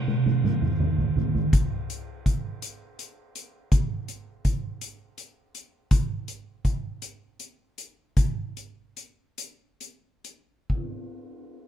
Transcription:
0.08 high tom medium
0.26 mid tom medium
0.44 mid tom medium
0.62 mid tom medium
0.80 mid tom loud
0.98 floor tom medium
1.16 floor tom loud
1.35 floor tom loud
1.53 kick medium
1.53 closed hi-hat medium
1.90 closed hi-hat soft
2.26 kick medium
2.26 closed hi-hat soft
2.62 closed hi-hat medium
2.99 closed hi-hat soft
3.35 closed hi-hat soft
3.72 kick medium
3.72 closed hi-hat medium
4.08 closed hi-hat soft
4.45 kick medium
4.45 closed hi-hat soft
4.81 closed hi-hat medium
5.18 closed hi-hat soft
5.54 closed hi-hat soft
5.91 kick medium
5.91 closed hi-hat medium
6.28 closed hi-hat soft
6.65 kick soft
6.65 closed hi-hat soft
7.02 closed hi-hat soft
7.39 closed hi-hat soft
7.78 closed hi-hat soft
8.17 kick medium
8.17 closed hi-hat soft
8.57 closed hi-hat soft
8.97 closed hi-hat soft
9.38 closed hi-hat medium
9.80 closed hi-hat soft
10.24 closed hi-hat soft
10.70 kick soft
10.70 ride soft

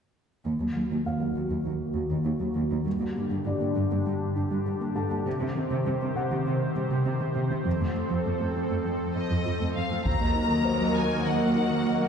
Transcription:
0.45 0.51 D#2 soft
0.45 2.82 D#3 medium
0.45 0.55 D#3 medium
0.45 2.82 A#3 medium
0.45 2.82 F#4 medium
0.60 0.66 D#2 soft
0.60 0.70 F#3 soft
0.76 0.82 D#2 soft
0.76 0.85 F#3 soft
0.91 0.97 D#2 soft
0.91 1.00 D#3 medium
1.05 1.12 D#2 soft
1.05 1.15 A#3 soft
1.05 2.82 F5 soft
1.20 1.26 D#2 soft
1.20 1.30 F#3 medium
1.35 1.42 D#2 soft
1.35 1.44 D#3 medium
1.50 1.56 D#2 soft
1.50 1.60 F#3 soft
1.65 1.71 D#2 soft
1.65 1.75 D#3 medium
1.95 2.01 D#2 soft
1.95 2.04 A#3 soft
2.11 2.17 D#2 soft
2.11 2.20 D#3 medium
2.25 2.31 D#2 soft
2.25 2.34 D#4 soft
2.40 2.47 D#2 soft
2.40 2.49 F#3 soft
2.55 2.62 D#2 soft
2.55 2.65 D#3 medium
2.70 2.77 D#2 soft
2.70 2.79 F#3 soft
2.85 2.92 G2 soft
2.85 5.26 D3 medium
2.85 2.94 G3 medium
2.85 5.26 D4 medium
2.85 7.65 G4 medium
3.00 3.07 G2 soft
3.00 3.09 A#3 soft
3.16 3.22 G2 soft
3.16 3.25 A#3 soft
3.31 3.37 G2 soft
3.31 3.40 G3 medium
3.45 3.52 G2 soft
3.45 3.55 D4 soft
3.45 5.22 D4 soft
3.45 5.22 D5 soft
3.61 3.67 G2 soft
3.61 3.70 A#3 medium
3.76 3.82 G2 medium
3.76 3.85 G3 medium
3.91 3.97 G2 soft
3.91 4.00 A#3 soft
4.06 4.12 G2 medium
4.06 4.15 G3 medium
4.36 4.42 G2 soft
4.36 4.45 D4 medium
4.51 4.57 G2 medium
4.51 4.60 G3 medium
4.66 4.72 G2 soft
4.66 4.75 G4 medium
4.81 4.87 G2 soft
4.81 4.90 A#3 medium
4.95 5.02 G2 medium
4.95 5.04 G3 medium
4.95 6.72 A4 soft
4.95 6.72 A5 soft
5.10 5.16 G2 soft
5.10 5.20 A#3 soft
5.25 5.34 C3 medium
5.25 5.32 C3 medium
5.25 7.66 D#3 medium
5.25 10.05 C4 medium
5.25 10.06 C5 medium
5.40 5.46 C3 soft
5.40 5.49 D#3 soft
5.55 5.62 C3 soft
5.55 5.64 D#3 soft
5.70 5.76 C3 medium
5.70 5.80 C3 medium
5.85 5.92 C3 soft
5.85 5.94 G3 soft
6.01 6.07 C3 soft
6.01 6.10 D#3 medium
6.15 6.25 C3 medium
6.15 6.22 C3 medium
6.15 7.92 F#5 soft
6.30 6.37 C3 soft
6.30 6.40 D#3 medium
6.46 6.55 C3 medium
6.46 6.52 C3 medium
6.76 6.82 C3 soft
6.76 6.85 G3 medium
6.91 6.97 C3 medium
6.91 7.00 C3 medium
7.06 7.12 C3 soft
7.06 7.15 C4 medium
7.20 7.26 C3 soft
7.20 7.30 D#3 medium
7.35 7.41 C3 medium
7.35 7.45 C3 medium
7.50 7.57 C3 soft
7.50 7.59 D#3 medium
7.65 7.71 F2 medium
7.65 10.05 F3 medium
7.65 7.74 F3 medium
7.65 10.06 A4 medium
7.80 7.87 F2 soft
7.80 7.89 A3 soft
7.96 8.02 F2 soft
7.96 8.05 A3 soft
8.10 8.17 F2 medium
8.10 8.19 F3 medium
8.26 8.32 F2 soft
8.26 8.35 C4 soft
8.40 8.47 F2 soft
8.40 8.49 A3 soft
8.55 8.62 F2 soft
8.55 8.64 F3 medium
8.70 8.77 F2 soft
8.70 8.79 A3 soft
8.85 8.92 F2 medium
8.85 8.94 F3 medium
9.15 9.21 F2 soft
9.15 9.25 C4 soft
9.15 9.71 D#5 medium
9.30 9.37 F2 medium
9.30 9.39 F3 medium
9.46 9.52 F2 soft
9.46 9.55 F4 medium
9.60 9.67 F2 soft
9.60 9.69 A3 soft
9.75 9.82 F2 soft
9.75 9.84 F3 medium
9.75 10.06 F5 soft
9.91 9.97 F2 soft
9.91 10.00 A3 soft
10.05 12.08 D#2 medium
10.05 10.14 D#3 medium
10.05 12.08 F#3 medium
10.05 12.08 A#3 medium
10.05 12.08 A#3 soft
10.05 12.08 F#4 soft
10.05 12.08 A#4 medium
10.05 12.08 D#5 medium
10.05 10.94 A#5 medium
10.05 taiko medium
10.21 10.30 A#3 medium
10.36 10.45 D#4 soft
10.50 10.59 D#3 medium
10.65 12.08 C5 soft
10.80 10.89 F#3 soft
10.95 11.05 D#3 medium
10.95 11.26 G#5 medium
11.26 11.35 D#3 medium
11.26 12.08 F#5 medium
11.41 11.50 A#3 soft
11.56 11.65 D#4 medium
11.71 11.80 D#3 medium
11.86 11.95 F#3 medium
12.01 12.08 A#3 soft

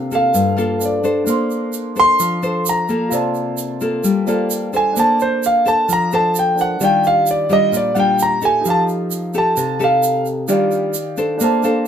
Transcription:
0.00 0.32 C3 medium
0.00 0.77 D4 medium
0.00 0.77 A4 medium
0.00 0.79 C5 soft
0.00 0.80 F5 medium
0.11 0.54 A#3 medium
0.11 0.54 F4 medium
0.11 0.55 A4 medium
0.11 0.79 F5 medium
0.11 shaker soft
0.34 1.24 G2 medium
0.34 shaker medium
0.57 1.00 A#3 medium
0.57 1.00 F4 medium
0.57 1.00 A4 medium
0.57 shaker soft
0.79 1.23 D4 soft
0.79 1.27 A4 soft
0.79 1.26 C5 soft
0.79 1.28 F5 soft
0.79 shaker medium
0.85 1.26 D5 medium
1.04 1.92 D4 medium
1.04 1.93 A4 medium
1.04 1.93 C5 medium
1.04 shaker soft
1.24 2.17 A#3 medium
1.24 3.07 D4 medium
1.24 3.08 C5 medium
1.24 shaker medium
1.30 3.09 C6 medium
1.51 shaker soft
1.73 shaker medium
1.96 2.39 D4 medium
1.96 2.39 A4 medium
1.96 2.39 C5 medium
1.96 2.63 C6 loud
1.96 shaker soft
2.20 3.09 F3 medium
2.20 shaker medium
2.43 2.85 D4 medium
2.43 2.85 A4 medium
2.43 2.85 C5 medium
2.43 shaker soft
2.66 3.11 A#5 medium
2.66 shaker medium
2.89 3.77 A#3 medium
2.89 3.77 F4 medium
2.89 3.78 A4 medium
2.89 shaker soft
3.09 4.01 C3 medium
3.09 4.23 F4 medium
3.09 4.25 C5 medium
3.09 shaker medium
3.13 4.26 D5 soft
3.13 4.26 A5 medium
3.35 shaker soft
3.58 shaker medium
3.81 4.23 A#3 medium
3.81 4.23 F4 medium
3.81 4.24 A4 medium
3.81 shaker soft
4.04 4.94 G3 medium
4.04 shaker medium
4.25 4.69 A#3 medium
4.25 4.95 F4 soft
4.25 4.70 F4 medium
4.25 4.70 A4 medium
4.25 4.95 C5 soft
4.25 4.96 D5 soft
4.25 4.97 A5 soft
4.25 shaker soft
4.50 shaker medium
4.73 5.61 D4 medium
4.73 5.62 A4 medium
4.73 5.62 C5 medium
4.73 4.97 G#5 medium
4.73 shaker soft
4.93 5.86 A#3 medium
4.93 6.52 D4 medium
4.93 6.54 C5 soft
4.93 shaker medium
4.99 6.55 A5 medium
4.99 5.20 A5 medium
5.20 5.43 C5 medium
5.20 shaker soft
5.43 5.67 F5 medium
5.43 shaker medium
5.65 6.08 D4 medium
5.65 6.08 A4 medium
5.65 6.08 C5 medium
5.65 5.89 A5 medium
5.65 shaker soft
5.89 6.78 F3 medium
5.89 shaker medium
5.93 6.13 A#5 loud
6.12 6.77 D4 medium
6.12 6.78 A4 medium
6.12 6.78 C5 medium
6.12 6.35 A5 medium
6.12 shaker soft
6.35 6.59 G5 medium
6.35 shaker medium
6.55 6.79 D4 soft
6.55 6.80 A#4 soft
6.55 6.81 C5 soft
6.55 6.81 A5 soft
6.55 shaker soft
6.61 6.82 F#5 medium
6.80 7.70 D#3 medium
6.80 7.46 G3 medium
6.80 7.46 D4 medium
6.80 7.46 F4 medium
6.80 8.61 G4 soft
6.80 8.62 D5 soft
6.80 8.63 F5 medium
6.80 shaker medium
6.84 7.05 G5 medium
7.04 7.28 F5 medium
7.04 shaker soft
7.27 shaker medium
7.31 7.51 D5 medium
7.49 7.92 G3 medium
7.49 7.92 D4 medium
7.49 7.92 F4 medium
7.49 7.74 D#5 loud
7.49 shaker soft
7.72 8.62 A#2 medium
7.72 shaker medium
7.77 7.97 D5 medium
7.95 8.38 G3 medium
7.95 8.38 D4 medium
7.95 8.38 F4 medium
7.95 7.97 F#5 medium
7.95 shaker soft
8.00 8.20 G5 medium
8.19 8.43 A#5 loud
8.19 shaker medium
8.42 9.30 D#4 medium
8.42 9.30 G4 medium
8.42 9.31 A4 medium
8.42 8.66 G#5 medium
8.42 shaker soft
8.61 10.43 D#4 medium
8.61 10.45 G4 soft
8.61 10.45 A4 soft
8.65 9.55 F3 medium
8.65 10.47 F5 medium
8.65 shaker medium
8.70 8.82 A5 medium
8.89 shaker soft
9.11 shaker medium
9.34 9.76 D#4 medium
9.34 9.76 G4 medium
9.34 9.77 A4 medium
9.34 shaker soft
9.38 9.79 A5 medium
9.57 10.47 C3 medium
9.57 shaker medium
9.79 10.45 D#4 medium
9.79 10.45 G4 medium
9.79 10.45 A4 medium
9.79 shaker soft
9.84 10.25 F5 medium
10.03 shaker medium
10.26 shaker soft
10.48 11.38 D#3 medium
10.48 10.94 G3 medium
10.48 10.94 D4 medium
10.48 10.95 F4 medium
10.48 11.38 G4 medium
10.48 11.39 D5 medium
10.48 11.40 F5 medium
10.48 shaker medium
10.71 shaker soft
10.94 shaker medium
11.17 11.60 D4 medium
11.17 11.60 A4 medium
11.17 11.61 C5 medium
11.17 shaker soft
11.38 11.88 A#3 medium
11.38 11.88 D4 medium
11.38 shaker medium
11.42 11.88 C5 medium
11.42 11.88 A5 medium
11.63 11.88 D4 medium
11.63 11.88 A4 medium
11.63 11.88 C5 medium
11.63 11.85 F5 medium
11.63 shaker soft

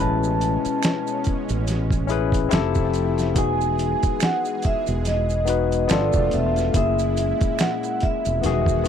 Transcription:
0.00 0.56 A1 loud
0.00 2.49 B2 medium
0.00 1.49 G#3 medium
0.00 2.49 G#3 medium
0.00 1.47 C#4 medium
0.00 2.49 C#4 loud
0.00 1.48 E4 medium
0.00 1.49 B4 medium
0.00 1.22 A5 medium
0.23 maracas medium
0.41 closed hi-hat medium
0.41 maracas soft
0.65 muted fretless electric bass stroke medium
0.65 closed hi-hat soft
0.65 maracas soft
0.83 finger snap medium
0.83 snare loud
0.83 closed hi-hat loud
0.83 maracas medium
1.07 maracas medium
1.24 muted fretless electric bass stroke soft
1.24 kick medium
1.24 closed hi-hat medium
1.24 maracas soft
1.49 2.48 A1 medium
1.49 closed hi-hat soft
1.49 maracas soft
1.67 snare soft
1.67 closed hi-hat medium
1.67 maracas medium
1.91 kick loud
1.91 closed hi-hat soft
1.91 maracas medium
2.07 2.51 C#4 medium
2.07 2.49 E4 medium
2.07 2.52 G#4 medium
2.07 closed hi-hat medium
2.07 maracas soft
2.12 2.53 B4 loud
2.32 kick loud
2.32 closed hi-hat medium
2.32 maracas soft
2.49 3.37 F1 loud
2.49 3.35 F3 medium
2.49 3.35 A3 medium
2.49 3.25 C4 loud
2.49 3.26 E4 medium
2.49 3.35 E4 medium
2.49 3.27 G4 medium
2.49 finger snap medium
2.49 closed hi-hat medium
2.49 maracas medium
2.53 3.28 A4 loud
2.53 snare loud
2.75 kick loud
2.75 maracas soft
2.94 closed hi-hat medium
2.94 maracas soft
3.18 snare soft
3.18 closed hi-hat soft
3.18 maracas medium
3.34 3.94 E1 loud
3.34 5.87 E3 medium
3.34 5.87 G#3 medium
3.34 4.85 B3 medium
3.34 4.86 D#4 medium
3.34 4.87 F#4 medium
3.34 5.87 G#4 loud
3.34 kick loud
3.34 closed hi-hat medium
3.34 maracas medium
3.38 4.87 G#4 medium
3.38 4.24 G#5 loud
3.61 maracas medium
3.79 closed hi-hat medium
3.79 maracas soft
4.03 muted fretless electric bass stroke soft
4.03 kick loud
4.03 closed hi-hat medium
4.03 maracas soft
4.20 4.61 F#5 loud
4.20 finger snap medium
4.20 snare loud
4.20 closed hi-hat loud
4.20 maracas medium
4.45 maracas medium
4.62 4.84 E5 loud
4.62 muted fretless electric bass stroke soft
4.62 kick loud
4.62 closed hi-hat medium
4.62 maracas soft
4.87 5.86 E1 loud
4.87 closed hi-hat soft
4.87 maracas medium
5.05 5.86 D#5 loud
5.05 snare soft
5.05 closed hi-hat medium
5.05 maracas medium
5.30 closed hi-hat soft
5.30 maracas medium
5.45 5.86 B3 medium
5.45 5.89 D#4 medium
5.45 5.90 F#4 medium
5.45 closed hi-hat medium
5.45 maracas medium
5.49 5.91 B4 medium
5.72 closed hi-hat medium
5.72 maracas medium
5.88 6.11 G1 loud
5.88 6.73 B2 medium
5.88 6.73 A3 medium
5.88 6.64 B3 medium
5.88 6.65 D4 medium
5.88 6.73 F4 medium
5.88 6.65 F4 medium
5.88 6.34 D5 medium
5.88 finger snap medium
5.88 snare loud
5.88 closed hi-hat medium
5.88 maracas medium
5.92 6.66 A4 medium
6.13 6.30 E1 medium
6.13 kick loud
6.13 maracas medium
6.31 6.69 E1 medium
6.31 6.75 E5 loud
6.31 closed hi-hat medium
6.31 maracas soft
6.56 snare soft
6.56 closed hi-hat soft
6.56 maracas medium
6.72 7.32 F#1 loud
6.72 8.42 A#2 medium
6.72 8.41 G#3 medium
6.72 8.23 A#3 medium
6.72 8.24 C#4 medium
6.72 8.42 E4 medium
6.72 8.25 E4 medium
6.72 7.62 E5 loud
6.72 kick loud
6.72 closed hi-hat medium
6.72 maracas medium
6.77 8.26 G#4 medium
6.99 closed hi-hat soft
6.99 maracas medium
7.17 closed hi-hat medium
7.17 maracas soft
7.41 muted fretless electric bass stroke medium
7.41 kick loud
7.41 closed hi-hat medium
7.41 maracas soft
7.59 8.03 F#5 medium
7.59 finger snap medium
7.59 snare loud
7.59 closed hi-hat loud
7.59 maracas medium
7.83 closed hi-hat soft
7.83 maracas soft
8.01 8.44 E5 medium
8.01 muted fretless electric bass stroke soft
8.01 kick medium
8.01 closed hi-hat medium
8.25 8.41 E1 medium
8.25 closed hi-hat medium
8.25 maracas medium
8.42 8.88 E1 loud
8.42 8.81 D#3 medium
8.42 8.88 D#3 medium
8.42 8.88 G#3 medium
8.42 8.80 B3 medium
8.42 8.88 F#4 medium
8.42 8.81 F#4 medium
8.42 closed hi-hat medium
8.42 maracas medium
8.46 8.82 G#4 medium
8.46 8.88 E5 medium
8.46 snare soft
8.66 kick loud
8.66 maracas medium
8.84 8.88 D#3 medium
8.84 8.88 B3 medium
8.84 maracas medium

